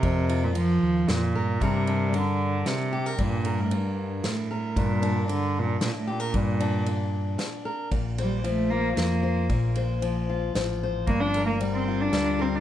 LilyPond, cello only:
\new Staff \with { instrumentName = "Cello" } { \clef bass \time 3/4 \key bes \major \tempo 4 = 114 c8. bes,16 f4 bes,4 | c4 d4 c4 | bes,8. a,16 g,4 a,4 | bes,4 d8 bes,8 bes,16 a,16 bes,8~ |
bes,2 r4 | r8 g8 a8 bes8 bes4~ | bes8 r2 r8 | bes16 d'8 bes8 c'8 d'8. c'16 d'16 | }